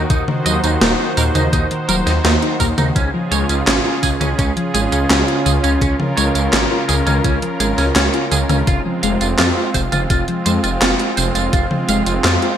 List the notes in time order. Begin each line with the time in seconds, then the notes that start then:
Already playing: D#3 D#4 F#4
0.10 D#2 A#2 D#4 C5, kick, closed hi-hat, tambourine
0.28 D#3, mid tom
0.46 D#2 F#3 D#5, closed hi-hat, tambourine
0.64 D#2 D#4, closed hi-hat, tambourine
0.81 D#1 A#3 D#4, snare, closed hi-hat, tambourine
1.00 D#4
1.17 D#2 A#2 A#4, open hi-hat, tambourine
1.35 D#2 D#4, closed hi-hat, mid tom, tambourine
1.53 D#2 A#2 D#4, kick, closed hi-hat, tambourine
1.71 D#3, closed hi-hat
1.89 D#1 F#3 A#4, closed hi-hat, tambourine
2.06 D#2 D#4, snare, closed hi-hat, tambourine
2.24 D#2 A#3 D#4, snare, closed hi-hat, tambourine
2.42 D#4, closed hi-hat
2.60 D#2 A#2 A#4, kick, open hi-hat, tambourine
2.78 D#2 D#4, closed hi-hat, mid tom, tambourine
2.95 C#2 C#3 C#4 F4 G#4, kick, closed hi-hat, tambourine
3.14 F3
3.31 C#2 G#3 C#5, closed hi-hat, tambourine
3.49 C#2 C#4, closed hi-hat, tambourine
3.67 G#1 C#4, snare, clap, closed hi-hat, tambourine
3.85 F4
4.03 C#2 C#3 G#4, kick, open hi-hat, tambourine
4.21 C#2 C#4, closed hi-hat, mid tom, tambourine
4.38 C#2 C#3 C#4, kick, closed hi-hat, tambourine
4.57 F3, closed hi-hat
4.74 G#1 G#3 G#4, closed hi-hat, tambourine
4.92 C#2 C#4, closed hi-hat, tambourine
5.10 C#2 C#4, snare, clap, closed hi-hat, tambourine
5.28 F4, closed hi-hat
5.46 C#2 C#3 G#4, open hi-hat, tambourine
5.64 C#2 C#4, closed hi-hat, tambourine
5.81 C#2 C#3 C#4 A#4, kick, closed hi-hat, tambourine
5.99 F3, mid tom
6.17 C#2 G#3 C#5, closed hi-hat, tambourine
6.35 C#2 C#4, closed hi-hat, tambourine
6.52 G#1 C#4, snare, clap, closed hi-hat, tambourine
6.71 F4
6.88 C#2 C#3 G#4, open hi-hat, tambourine
7.06 C#2 C#4, closed hi-hat, mid tom, tambourine
7.24 C#2 C#3 C#4, kick, closed hi-hat, tambourine
7.42 F3, closed hi-hat
7.60 G#1 G#3 G#4, closed hi-hat, tambourine
7.78 C#2 C#4, snare, closed hi-hat, tambourine
7.96 C#2 C#4, snare, clap, closed hi-hat, tambourine
8.14 F4, closed hi-hat
8.31 C#2 C#3 G#4, open hi-hat, tambourine
8.49 C#2 C#4, closed hi-hat, mid tom, tambourine
8.67 F1 C3 G#3 C4 F4, kick, closed hi-hat, tambourine
8.86 F3
9.03 F1 G#3 F5, closed hi-hat, tambourine
9.21 F1 F4, closed hi-hat, tambourine
9.38 F2 C4 F4, snare, clap, closed hi-hat, tambourine
9.57 F4
9.74 F1 C3 C5, kick, open hi-hat, tambourine
9.92 F1 F4, closed hi-hat, mid tom, tambourine
10.10 F1 C3 F4, kick, closed hi-hat, tambourine
10.28 F3, closed hi-hat
10.46 F2 G#3 C5, closed hi-hat, tambourine
10.64 F1 F4, closed hi-hat, tambourine
10.81 F1 C4 F4, snare, clap, closed hi-hat, tambourine
10.99 F4, closed hi-hat
11.17 F1 C3 C5, open hi-hat, tambourine
11.35 F1 F4, closed hi-hat, tambourine
11.53 F1 C3 F4, kick, closed hi-hat, tambourine
11.71 F3, mid tom
11.89 F1 G#3 F5, closed hi-hat, tambourine
12.06 F1 F4, closed hi-hat, tambourine
12.24 F2 C4 F4, snare, clap, closed hi-hat, tambourine
12.42 F4, closed hi-hat